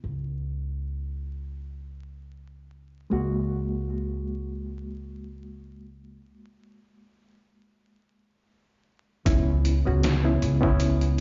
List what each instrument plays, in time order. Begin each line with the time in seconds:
Already playing: reed electric piano B3 C#4 E4
0.04 upright bass C#2
3.10 upright bass C#2, reed electric piano G#3 A#3 F#4
9.25 upright bass C#2, reed electric piano B3 C#4 E4, kick, closed hi-hat
9.65 closed hi-hat
9.86 upright bass C#2, reed electric piano B3 C#4 F#4
10.03 snare, closed hi-hat
10.24 reed electric piano B3 C#4 E4
10.42 upright bass C#2, closed hi-hat
10.61 reed electric piano B3 C#4 E4, kick
10.80 closed hi-hat
11.01 closed hi-hat